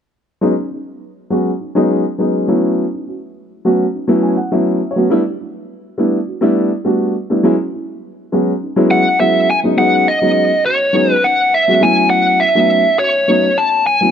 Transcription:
0.41 F#3 G#3 B3 C#4 D#4
0.57 C#4 D#4
0.71 C#4 D#4
1.30 F#3 G#3 B3 C#4 F#4
1.60 C#4 D#4
1.75 F#3 G#3 B3 C#4 D#4
2.18 F#3 G#3 B3 C#4 D#4
2.48 F#3 A3 B3 C#4 E4
2.92 C#4 D#4
3.07 C#4 F#4
3.65 F#3 A3 B3 C#4 F#4
3.93 C#4 D#4
4.08 F#3 A3 B3 C#4 E4
4.23 G#5
4.37 F#5
4.52 F#3 A3 B3 C#4 E4 E5
4.91 C#5
4.96 F#3 A3 B3 C#4 F#4
5.10 G3 A3 B3 D4 E4
5.25 D4 G4
5.40 D4 E4
5.98 G3 A3 B3 D4 E4
6.27 D4 F#4
6.41 G3 A3 B3 D4 E4
6.85 G3 A3 B3 D4 F#4
7.30 G3 A3 B3 D4 E4
7.43 F#3 G#3 B3 C#4 E4
7.60 C#4 F#4
7.73 C#4 E4
8.32 F#3 G#3 B3 C#4 F#4
8.61 C#4 D#4
8.76 F#3 G#3 B3 C#4 E4
8.91 E5 F#5
9.20 F#3 G#3 B3 C#4 E4 E5 F#5
9.51 G#5
9.64 F#3 G#3 B3 C#4 D#4
9.77 F#3 G#3 B3 C#4 D#4 F#5
10.08 D#5
10.21 F#3 G#3 B3 C#4 D#4
10.65 C#4 F#4 C#5
10.93 F#3 G#3 B3 C#4 D#4
11.12 B4
11.23 C#4 D#4 F#5
11.54 E5
11.68 F#3 G#3 B3 C#4 F#4
11.81 F#3 A3 B3 C#4 E4 G#5
12.10 F#5
12.40 E5
12.55 F#3 A3 B3 C#4 D#4
12.98 C#4 F#4 C#5
13.28 F#3 A3 B3 C#4 D#4
13.56 C#4 D#4 A5
13.87 G#5
14.01 F#3 A3 B3 C#4 E4

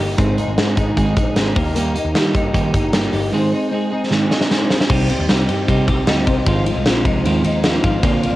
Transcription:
Already playing: A#3 D#4 G4
0.00 G1 A#3 D#4
0.17 G#1 G#2 D#3 G#3 C4 D#4 G#4, kick, closed hi-hat
0.37 G#3 C4 D#4 G#4, closed hi-hat
0.48 G#1
0.57 G#2 G#3 C4 D#4 G#4, snare, closed hi-hat
0.76 G#1 G#3 C4 D#4 G#4, kick, closed hi-hat
0.96 G#2 D#3 G#3 C4 D#4 G#4, kick, closed hi-hat
1.16 A#1 G#3 C4 D#4 G#4, kick, closed hi-hat
1.35 G#1 G#3 C4 D#4 G#4, snare, closed hi-hat
1.55 D#2 A#3 D#4 G4, kick, open hi-hat
1.75 D#3 G3 A#3 D#4 G4, closed hi-hat
1.94 A#3 D#4 G4, closed hi-hat
2.05 D#2
2.14 D#3 G3 A#3 D#4 G4, snare, closed hi-hat
2.34 G2 A#3 D#4 G4, kick, closed hi-hat
2.53 D#3 G3 A#3 D#4 G4, kick, closed hi-hat
2.73 G1 A#3 D#4 G4, kick, closed hi-hat
2.93 G3 A#3 D#4 G4, snare, closed hi-hat
3.12 G1 A#3 D#4 G4, open hi-hat
3.32 G#2 D#3 G#3 C4 D#4 G#4
3.51 G#3 C4 D#4 G#4
3.71 G#3 C4 D#4 G#4
3.91 G#3 C4 D#4 G#4
4.10 G#2 D#3 G#3 C4 D#4 G#4, snare
4.30 G#3 C4 D#4 G#4, snare
4.41 snare
4.49 G#3 C4 D#4 G#4, snare
4.69 G#3 C4 D#4 G#4, snare
4.80 snare
4.89 C2 C3 G3 C4 D#4 G4, kick, crash
5.09 C4 D#4 G4, ride
5.20 D#2
5.28 C2 G3 C4 D#4 G4, snare, ride
5.48 G2 C4 D#4 G4, ride
5.68 C3 G3 C4 D#4 G4, kick, ride
5.87 C2 C4 D#4 G4, kick, ride
6.07 D2 G3 C4 D#4 G4, snare, ride
6.26 C2 C4 D#4 G4, kick, ride
6.46 G#1 G#2 D#3 F3 G#3 C4 D#4 F4, kick, ride
6.66 F3 G#3 C4 F4, ride
6.76 C2
6.85 A#1 F3 G#3 C4 F4, snare, ride
7.05 C2 F3 G#3 C4 D#4 F4, kick, ride
7.24 D#2 G#2 D#3 F3 G#3 C4 F4, ride
7.43 D#2 F3 G#3 C4 D#4 F4, ride
7.63 F3 G#3 A#3 C4 F4, snare, ride
7.75 C4
7.83 G#1 F3 G#3 C4 F4, kick, ride
8.02 A#1 A#2 D3 F3 A#3 C4 D4 F4, kick, ride
8.22 F3 A#3 C4 F4, ride

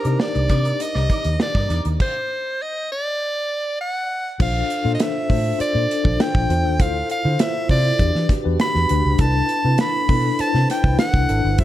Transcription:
Already playing: D4 D#4 G4 A#4 C5
0.05 C3 D4 D#4 G4 A#4 D5, closed hi-hat
0.20 D5, muted clean electric guitar stroke, snare
0.35 C2, muted clean electric guitar stroke, closed hi-hat
0.49 C3 D#4 A#4 D5, kick, closed hi-hat
0.65 muted clean electric guitar stroke, closed hi-hat
0.80 D#5, muted clean electric guitar stroke, closed hi-hat
0.95 C2 D#4 A#4 D5, snare
1.10 D#4 A#4 D5, kick, closed hi-hat
1.24 D#2, muted clean electric guitar stroke, closed hi-hat
1.40 D5, muted clean electric guitar stroke, snare
1.54 G2 D#4 A#4 D5, kick, snare
1.70 E2 D#4 A#4 D5, closed hi-hat
1.85 D#2, muted clean electric guitar stroke, closed hi-hat
2.00 C5, kick, crash
2.62 D#5
2.92 D5
3.81 F#5
4.39 A#1 D4 F4 A4 C5 F5, kick, crash
4.70 closed hi-hat
4.84 A#2 D4 F4 A4 C5
4.94 D#5
5.00 E5, snare, closed hi-hat
5.29 A2 D4 F4 A4 C5, kick, open hi-hat
5.58 D4 F4 A4 C5 D5, muted fingered electric bass stroke, closed hi-hat
5.75 A#2
5.91 closed hi-hat
6.04 A#1 D4 F4 A4 C5, kick
6.20 G5, snare, closed hi-hat
6.35 A#1, kick, snare
6.49 E2 D4 F4 A4 C5, closed hi-hat
6.65 D#2
6.79 D2 E4 F4 A4 C5 F5, kick, closed hi-hat
7.10 F5, closed hi-hat
7.24 D3 E4 F4 A4 C5
7.39 E5, snare, closed hi-hat
7.69 C3 E4 F4 A4 C5 D5, kick, open hi-hat
7.99 E2 D4 F#4 G4 B4, kick, closed hi-hat
8.15 E3, snare
8.29 kick, snare, closed hi-hat
8.44 E2 D4 F#4 G4 B4
8.60 B5, snare, closed hi-hat
8.75 E2, snare
8.89 D2 D4 F#4 G4 B4, closed hi-hat
9.05 C#2
9.19 C2 D4 E4 A4 B4 A5, kick, closed hi-hat
9.49 closed hi-hat
9.64 C3 D4 E4 A4 B4
9.78 B5, snare, closed hi-hat
10.09 B2 D4 E4 A4 B4, kick, open hi-hat
10.39 D4 E4 A4 C5 A5, muted fingered electric bass stroke, closed hi-hat
10.54 C3, snare
10.70 G5, snare, closed hi-hat
10.84 C2 D4 E4 A4 B4, kick
10.99 F#5, snare, closed hi-hat
11.14 C2, kick, snare
11.29 G#1 D4 E4 A4 B4, closed hi-hat
11.45 G1
11.58 F#2 E4 F#4 A4 C5 E5, kick, closed hi-hat

